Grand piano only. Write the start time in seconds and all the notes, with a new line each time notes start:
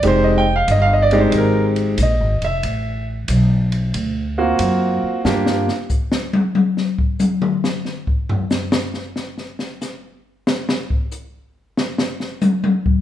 0.03 G#3 C4 D#4 G4
0.07 C5
0.24 D#5
0.38 G5
0.56 F5
0.71 D#5
0.82 F5
0.93 D#5
1.02 D5
1.12 G#3 C4 D#4 G4
1.20 C5
1.38 A#4
2.02 D#5
2.44 E5
4.38 A#3 C4 F4 F#4
5.25 A#3 D4 F4 G4